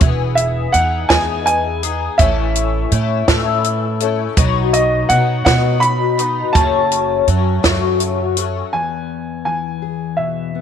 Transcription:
0.01 0.66 E1 medium
0.01 0.73 E3 medium
0.01 0.73 B3 medium
0.01 0.74 G#4 medium
0.01 kick medium
0.01 closed hi-hat medium
0.35 0.74 E5 medium
0.35 closed hi-hat medium
0.72 1.06 E2 medium
0.72 1.10 E3 soft
0.72 1.10 B3 medium
0.72 1.10 D#4 medium
0.72 1.09 G#4 medium
0.72 1.11 F#5 medium
0.72 closed hi-hat medium
1.09 2.07 E2 medium
1.09 1.84 E3 medium
1.09 1.84 B3 medium
1.09 1.83 D#4 soft
1.09 1.82 G#4 medium
1.09 1.44 G#5 medium
1.09 kick medium
1.09 snare loud
1.09 closed hi-hat medium
1.46 2.21 G#5 loud
1.46 closed hi-hat medium
1.83 2.20 B3 soft
1.83 2.20 D#4 soft
1.83 2.19 G#4 soft
1.83 closed hi-hat medium
2.18 2.84 A1 medium
2.18 2.92 A2 medium
2.18 2.92 E3 medium
2.18 2.90 A3 medium
2.18 2.91 C#4 medium
2.18 2.92 E4 medium
2.18 2.93 A4 medium
2.18 3.23 E5 medium
2.18 kick medium
2.18 closed hi-hat medium
2.55 closed hi-hat medium
2.92 3.24 A2 medium
2.92 3.28 A3 medium
2.92 3.28 C#4 medium
2.92 3.28 E4 medium
2.92 3.27 A4 medium
2.92 closed hi-hat medium
3.28 4.25 A2 medium
3.28 4.02 A2 medium
3.28 4.01 E3 medium
3.28 4.01 A3 medium
3.28 4.01 C#4 medium
3.28 4.00 E4 medium
3.28 4.00 A4 medium
3.28 kick medium
3.28 snare loud
3.28 closed hi-hat medium
3.64 closed hi-hat medium
4.00 4.36 A3 soft
4.00 4.37 C#4 soft
4.00 4.37 E4 soft
4.00 4.37 A4 medium
4.00 closed hi-hat medium
4.37 5.02 B1 medium
4.37 5.09 B2 medium
4.37 5.09 F#3 medium
4.37 5.09 B3 medium
4.37 5.10 D#4 medium
4.37 5.11 F#4 medium
4.37 kick medium
4.37 closed hi-hat medium
4.73 5.11 D#5 medium
4.73 closed hi-hat medium
5.09 5.42 B2 medium
5.09 5.46 F#3 medium
5.09 5.45 B3 medium
5.09 5.45 D#4 medium
5.09 5.44 F#4 medium
5.09 5.43 F#5 medium
5.09 closed hi-hat medium
5.45 6.43 B2 medium
5.45 6.19 B2 soft
5.45 6.19 F#3 medium
5.45 6.19 B3 medium
5.45 6.18 D#4 medium
5.45 6.17 F#4 medium
5.45 5.83 F#5 medium
5.45 kick medium
5.45 snare loud
5.45 closed hi-hat medium
5.80 6.50 B5 medium
5.80 closed hi-hat medium
6.18 6.55 B3 soft
6.18 6.55 D#4 soft
6.18 6.55 F#4 soft
6.18 closed hi-hat medium
6.53 7.20 F#1 medium
6.53 7.28 F#2 medium
6.53 7.28 C#3 medium
6.53 7.26 F#3 medium
6.53 7.27 A3 medium
6.53 7.27 C#4 medium
6.53 7.28 F#4 medium
6.53 8.32 A5 medium
6.53 kick medium
6.53 closed hi-hat medium
6.91 closed hi-hat medium
7.27 7.60 F#2 medium
7.27 7.63 F#3 medium
7.27 7.63 A3 medium
7.27 7.62 C#4 medium
7.27 7.62 F#4 medium
7.27 closed hi-hat soft
7.63 8.61 F#2 medium
7.63 8.37 F#2 medium
7.63 8.37 C#3 medium
7.63 8.37 F#3 medium
7.63 8.37 A3 medium
7.63 8.37 C#4 medium
7.63 8.36 F#4 medium
7.63 kick medium
7.63 snare medium
7.63 closed hi-hat medium
8.00 closed hi-hat medium
8.37 8.74 F#3 soft
8.37 8.74 A3 soft
8.37 8.74 C#4 soft
8.37 8.73 F#4 soft
8.37 closed hi-hat medium
8.73 10.61 E2 soft
8.73 10.54 B3 soft
8.73 9.44 G#5 medium
9.45 10.61 E3 soft
9.45 10.21 G#5 medium
9.82 10.61 G#4 soft
10.17 10.61 B2 soft
10.17 10.61 E5 medium
10.55 10.61 B3 soft

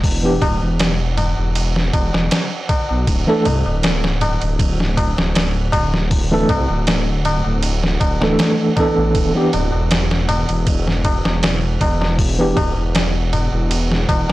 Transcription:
0.00 0.38 E1 loud
0.00 kick loud
0.04 open hi-hat medium
0.04 tabla na soft
0.23 0.40 E3 medium
0.23 0.41 B3 medium
0.23 0.41 D4 medium
0.23 0.42 G4 medium
0.41 0.59 D1 medium
0.41 kick medium
0.41 ride medium
0.41 tabla na medium
0.41 tabla ge medium
0.61 1.34 E1 loud
0.61 tabla na soft
0.80 snare loud
0.80 ride medium
0.80 tabla na soft
1.17 ride medium
1.17 tabla na medium
1.17 tabla ge medium
1.37 1.91 E1 loud
1.37 tabla na soft
1.55 ride medium
1.55 tabla na soft
1.76 snare soft
1.93 2.11 E1 medium
1.93 kick medium
1.93 ride medium
1.93 tabla na medium
2.13 2.30 E1 medium
2.13 snare medium
2.13 tabla na medium
2.31 snare loud
2.31 ride medium
2.31 tabla na soft
2.69 kick medium
2.69 ride medium
2.69 tabla na medium
2.89 3.06 B1 medium
2.89 tabla na soft
3.07 3.25 D1 loud
3.07 kick loud
3.07 ride medium
3.07 tabla na soft
3.27 3.44 E3 medium
3.27 3.45 A3 medium
3.27 3.45 D4 medium
3.27 3.46 A4 medium
3.45 3.64 C2 medium
3.45 ride medium
3.45 tabla na medium
3.45 tabla ge medium
3.66 4.38 D1 medium
3.66 tabla na medium
3.83 snare loud
3.83 ride medium
3.83 tabla na soft
4.04 snare soft
4.21 ride medium
4.21 tabla na medium
4.21 tabla ge medium
4.41 5.14 D1 loud
4.41 ride soft
4.41 tabla na medium
4.59 kick loud
4.59 ride medium
4.59 tabla na soft
4.79 snare soft
4.79 tabla ge medium
4.97 kick medium
4.97 ride medium
4.97 tabla na medium
5.17 5.71 D1 medium
5.17 snare soft
5.17 tabla na soft
5.35 snare loud
5.35 ride medium
5.35 tabla na soft
5.72 6.46 D1 loud
5.72 kick medium
5.72 ride medium
5.72 tabla na loud
5.93 snare soft
5.93 tabla na soft
6.11 kick loud
6.11 open hi-hat medium
6.11 tabla na soft
6.31 6.48 E3 medium
6.31 6.49 A3 medium
6.31 6.49 D4 medium
6.31 6.50 A4 loud
6.49 6.67 C2 medium
6.49 kick medium
6.49 ride medium
6.49 tabla na medium
6.49 tabla ge medium
6.68 7.42 D1 medium
6.68 tabla na medium
6.87 snare loud
6.87 ride medium
6.87 tabla na soft
7.25 ride medium
7.25 tabla na medium
7.25 tabla ge medium
7.45 7.98 D1 loud
7.45 tabla na soft
7.63 ride medium
7.63 tabla na soft
7.84 snare soft
8.00 8.19 D1 medium
8.00 kick medium
8.00 ride medium
8.00 tabla na medium
8.21 8.37 D1 medium
8.21 8.73 E3 medium
8.21 8.73 A3 medium
8.21 8.74 D4 medium
8.21 8.74 A4 medium
8.21 snare medium
8.21 tabla na soft
8.39 snare loud
8.39 ride medium
8.39 tabla na soft
8.76 9.30 E3 medium
8.76 9.31 B3 medium
8.76 9.31 D4 medium
8.76 9.31 A4 medium
8.76 kick medium
8.76 ride medium
8.76 tabla na loud
8.97 9.13 A1 medium
8.97 tabla na soft
9.14 9.33 E1 medium
9.14 kick loud
9.14 ride medium
9.14 tabla na soft
9.35 9.52 E3 medium
9.35 9.52 B3 medium
9.35 9.53 D4 medium
9.35 9.53 G4 medium
9.53 9.71 D1 medium
9.53 ride medium
9.53 tabla na medium
9.53 tabla ge medium
9.72 10.46 E1 loud
9.72 tabla na soft
9.90 snare loud
9.90 ride medium
9.90 tabla na soft
10.11 snare soft
10.29 ride medium
10.29 tabla na medium
10.29 tabla ge medium
10.48 11.22 E1 loud
10.48 ride soft
10.48 tabla na soft
10.67 kick loud
10.67 ride medium
10.67 tabla na soft
10.88 snare soft
10.88 tabla ge soft
11.05 kick medium
11.05 ride medium
11.05 tabla na medium
11.25 11.78 E1 medium
11.25 snare soft
11.25 tabla na soft
11.43 snare loud
11.43 ride medium
11.43 tabla na soft
11.81 12.53 E1 loud
11.81 kick medium
11.81 ride medium
11.81 tabla na medium
12.01 snare soft
12.01 tabla na soft
12.19 kick loud
12.19 open hi-hat medium
12.19 tabla na soft
12.39 12.56 E3 medium
12.39 12.56 B3 medium
12.39 12.57 D4 medium
12.39 12.57 G4 medium
12.56 12.74 D1 medium
12.56 kick medium
12.56 ride medium
12.56 tabla na medium
12.56 tabla ge medium
12.77 13.49 E1 medium
12.77 tabla na soft
12.94 snare loud
12.94 ride medium
12.94 tabla na soft
13.33 ride medium
13.33 tabla na medium
13.33 tabla ge medium
13.53 14.05 E1 loud
13.53 tabla na soft
13.70 ride medium
13.70 tabla na soft
13.92 snare soft
14.09 14.26 E1 medium
14.09 kick medium
14.09 ride medium
14.09 tabla na medium
14.28 tabla na soft

